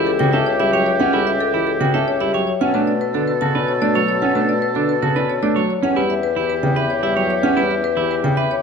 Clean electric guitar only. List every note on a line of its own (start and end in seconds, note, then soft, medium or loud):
0.00 0.11 E4 medium
0.20 0.37 F#4 medium
0.33 0.51 A4 medium
0.60 0.73 E4 medium
0.73 0.91 C#5 medium
1.00 1.18 C#4 medium
1.14 1.31 E4 medium
1.54 1.71 E4 medium
1.81 1.98 F#4 medium
1.94 2.11 A4 medium
2.21 2.34 E4 medium
2.34 2.52 C#5 medium
2.61 2.74 C#4 medium
2.75 2.92 D4 medium
3.15 3.32 D4 medium
3.42 3.59 F#4 medium
3.55 3.72 B4 medium
3.82 3.99 D4 medium
3.95 4.13 C#5 medium
4.22 4.35 C#4 medium
4.36 4.53 D4 medium
4.76 4.93 D4 medium
5.02 5.20 F#4 medium
5.16 5.33 B4 medium
5.43 5.60 D4 medium
5.56 5.73 C#5 medium
5.83 6.00 C#4 medium
5.96 6.13 E4 medium
6.36 6.54 E4 medium
6.76 6.94 B4 medium
7.03 7.16 E4 medium
7.17 7.34 C#5 medium
7.43 7.61 C#4 medium
7.57 7.74 E4 medium
7.97 8.14 E4 medium
8.37 8.55 B4 medium